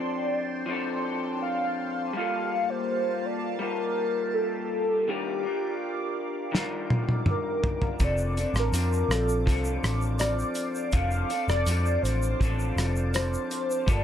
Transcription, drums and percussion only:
6.55 snare
6.90 high tom
7.09 high tom
7.26 mid tom
7.64 floor tom
7.82 floor tom
8.00 kick, closed hi-hat, tambourine, shaker
8.18 shaker
8.37 closed hi-hat, tambourine, shaker
8.55 cross-stick, shaker
8.74 closed hi-hat, tambourine, shaker
8.93 shaker
9.11 cross-stick, closed hi-hat, tambourine, shaker
9.29 shaker
9.47 kick, closed hi-hat, tambourine, shaker
9.65 shaker
9.84 cross-stick, closed hi-hat, tambourine, shaker
10.01 shaker
10.19 cross-stick, closed hi-hat, tambourine, shaker
10.39 shaker
10.55 closed hi-hat, tambourine, shaker
10.75 shaker
10.93 kick, closed hi-hat, tambourine, shaker
11.11 shaker
11.30 closed hi-hat, tambourine, shaker
11.49 cross-stick, shaker
11.66 closed hi-hat, tambourine, shaker
11.86 shaker
12.05 closed hi-hat, tambourine, shaker
12.22 shaker
12.41 kick, closed hi-hat, tambourine, shaker
12.59 shaker
12.78 cross-stick, closed hi-hat, tambourine, shaker
12.96 shaker
13.14 cross-stick, closed hi-hat, tambourine, shaker
13.34 shaker
13.51 closed hi-hat, tambourine, shaker
13.71 shaker
13.88 kick, closed hi-hat, tambourine, shaker

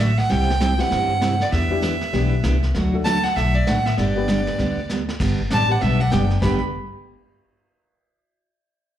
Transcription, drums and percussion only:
0.18 snare
0.30 brush sweep, snare
0.41 snare
0.50 snare
0.61 snare, hi-hat pedal
0.79 snare
0.91 brush sweep, snare
1.21 snare, hi-hat pedal
1.40 snare
1.52 brush sweep, snare
1.82 snare, hi-hat pedal
2.01 snare
2.13 brush sweep, snare
2.43 snare, hi-hat pedal
2.63 snare
2.74 brush sweep, snare
3.05 snare, hi-hat pedal
3.24 snare
3.37 brush sweep, snare
3.67 snare, hi-hat pedal
3.86 snare
3.98 brush sweep, snare
4.28 snare, hi-hat pedal
4.47 snare
4.59 brush sweep, snare
4.90 snare, hi-hat pedal
5.09 snare
5.20 brush sweep, kick, snare, crash
5.50 snare, hi-hat pedal
5.81 brush sweep, snare
6.12 snare, hi-hat pedal
6.30 snare
6.42 kick, snare

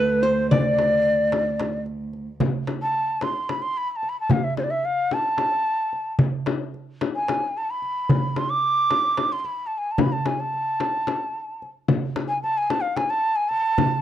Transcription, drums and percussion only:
0.25 darbuka ka
0.52 darbuka dum, frame drum
0.78 darbuka tek, frame drum
1.32 darbuka tek, frame drum
1.60 darbuka tek, frame drum
1.73 darbuka ka
1.86 darbuka ka
2.13 darbuka ka
2.40 darbuka dum, frame drum
2.67 darbuka tek, frame drum
2.94 darbuka ka
3.21 darbuka tek, frame drum
3.49 darbuka tek, frame drum
4.03 darbuka ka
4.30 darbuka dum, frame drum
4.57 frame drum
4.84 darbuka ka
5.11 frame drum
5.38 darbuka tek, frame drum
5.93 darbuka ka
6.19 frame drum, darbuka dum
6.46 darbuka tek, frame drum
6.74 darbuka ka
7.01 darbuka tek, frame drum
7.28 darbuka tek, frame drum
7.82 darbuka ka
8.09 darbuka dum, frame drum
8.36 darbuka tek, frame drum
8.90 darbuka tek, frame drum
9.17 darbuka tek, frame drum
9.31 darbuka ka
9.45 darbuka ka
9.98 darbuka dum, frame drum
10.26 darbuka tek, frame drum
10.53 darbuka ka
10.80 darbuka tek, frame drum
11.07 darbuka tek, frame drum
11.62 darbuka ka
11.88 frame drum, darbuka dum
12.16 darbuka tek, frame drum
12.44 darbuka ka
12.70 darbuka tek, frame drum
12.97 darbuka tek, frame drum
13.51 darbuka ka
13.78 darbuka dum, frame drum

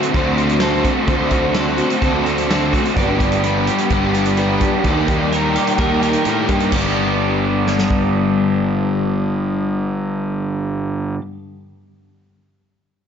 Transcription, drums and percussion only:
0.03 closed hi-hat
0.14 kick, closed hi-hat
0.38 closed hi-hat
0.50 closed hi-hat
0.60 snare, closed hi-hat
0.85 kick, closed hi-hat
1.08 kick, closed hi-hat
1.31 kick, closed hi-hat
1.55 snare, closed hi-hat
1.78 closed hi-hat
1.90 closed hi-hat
2.02 kick, closed hi-hat
2.26 closed hi-hat
2.38 closed hi-hat
2.51 snare, closed hi-hat
2.73 kick, closed hi-hat
2.86 closed hi-hat
2.97 kick, closed hi-hat
3.20 kick, closed hi-hat
3.32 closed hi-hat
3.44 closed hi-hat
3.67 closed hi-hat
3.79 closed hi-hat
3.90 kick, closed hi-hat
4.15 closed hi-hat
4.26 closed hi-hat
4.37 closed hi-hat
4.61 kick, closed hi-hat
4.84 kick, closed hi-hat
5.08 kick, closed hi-hat
5.33 closed hi-hat
5.56 closed hi-hat
5.67 closed hi-hat
5.78 kick, closed hi-hat
6.03 closed hi-hat
6.13 closed hi-hat
6.25 closed hi-hat
6.49 kick, closed hi-hat
6.60 closed hi-hat
6.72 kick, crash
7.67 snare
7.79 snare
7.90 kick

